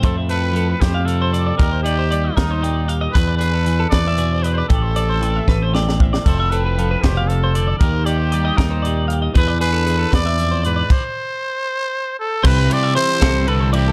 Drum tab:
CC |------------|------------|------------|------------|
RD |------------|------------|------------|------------|
HH |x-x-x-x-x-x-|x-x-x-x-x-x-|x-x-x-x-x-x-|x-x-x-------|
SD |------o-----|------o-----|------o-----|------o-oo-o|
BD |o-----o-----|o-----o-----|o-----o-----|o-----o---o-|

CC |x-----------|------------|------------|x-----------|
RD |------------|------------|------------|------------|
HH |x-x-x-x-x-x-|x-x-x-x-x-x-|x-x-x-x-x-x-|------------|
SD |------o-----|------o-----|------o-----|------------|
BD |o-----o-----|o-----o-----|o-----o-----|o-----------|

CC |x-----------|
RD |--x-x-x-x-x-|
HH |------------|
SD |------o-----|
BD |o-----o-----|